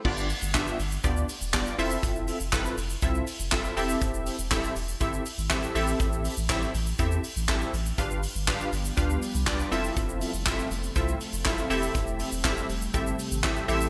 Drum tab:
CC |x---------------|----------------|----------------|----------------|
HH |--o-x-o-x-o-x-o-|x-o-x-o-x-o-x-o-|x-o-x-o-x-o---o-|x-o-x-o-x-o---o-|
SH |-xxxxxxxxxxxxxxx|xxxxxxxxxxxxxxxx|xxxxxxxxxxxxxxxx|xxxxxxxxxxxxxxxx|
CP |----x-------x---|----x-------x---|----x-------x---|----x-------x---|
SD |----o-------o---|----o-------o---|----o-------o---|----o-------o---|
BD |o---o---o---o---|o---o---o---o---|o---o---o---o---|o---o---o---o---|

CC |----------------|----------------|----------------|
HH |x-o---o-x-o-x-o-|x-o-x-o-x-o-x-o-|x-o-x-o-x-o-x-o-|
SH |xxxxxxxxxxxxxxxx|xxxxxxxxxxxxxxxx|xxxxxxxxxxxxxxxx|
CP |----x-------x---|----x-------x---|----x-------x---|
SD |----o-------o---|----o-------o---|----o-------o---|
BD |o---o---o---o---|o---o---o---o---|o---o---o---o---|